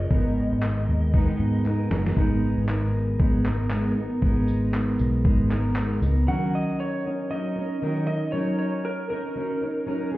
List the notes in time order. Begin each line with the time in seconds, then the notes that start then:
Already playing: C#4 F4 G#4 D#5
0.10 G#1 G#2 D#3 G#3 B3 D#4 A#4, kick
0.52 G#1
0.62 G#3 B3 D#4 A#4, clap
0.88 D#2
1.13 G#2 D#3 G#3 B3 D#4 A#4, kick
1.39 G#2
1.65 G#3 B3 D#4 A#4, clap
1.90 F#1 G#3 B3 D#4 A#4, snare
2.06 snare
2.17 G#1 G#3 B3 D#4 A#4, kick
2.58 G#1
2.68 G#3 B3 D#4 A#4, clap
3.19 G#1 G#3 B3 D#4 A#4, kick
3.44 B3 D#4 A#4, clap
3.70 G#3 B3 D#4 A#4, clap
3.96 B3 D#4 A#4
4.21 G#1 G#3 B3 D#4 A#4, kick
4.48 tambourine
4.73 G#3 B3 D#4 A#4, clap
4.99 B1, tambourine
5.24 G#1 G#3 B3 D#4 A#4, kick
5.50 B3 D#4 A#4, clap, tambourine
5.75 G#3 B3 D#4 A#4, clap
6.01 C#2 B3 D#4 A#4, tambourine
6.28 D#3 F#3 C#4 D#4 A#4 F#5
6.55 D#5
6.80 C#5
7.04 C#4 D#4 A#4
7.30 F#3 C#4 D#4 A#4 D#5
7.56 C#4 D#4 A#4
7.82 D#3 F#3 C#4 D#4 A#4
8.07 C#4 D#4 A#4 D#5
8.32 F#3 C#4 D#4 A#4 C#5
8.59 C#5
8.85 A#4
9.10 C#4 D#4 A#4
9.36 F#3 C#4 D#4 A#4
9.61 C#4 D#4 A#4
9.86 F#3 C#4 D#4 A#4
10.12 F4 G#4